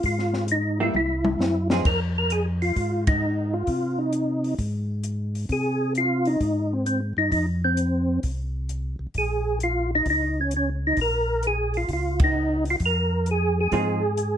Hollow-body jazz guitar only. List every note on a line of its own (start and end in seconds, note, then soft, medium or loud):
0.80 0.93 G3 medium
0.80 0.93 A#3 medium
0.80 0.93 E4 medium
1.71 1.84 F3 medium
1.71 1.85 C4 medium
1.71 1.85 D#4 medium
1.71 1.85 G#4 medium
13.73 14.00 F3 medium
13.73 14.00 C4 medium
13.73 14.01 D#4 medium
13.73 14.01 G#4 medium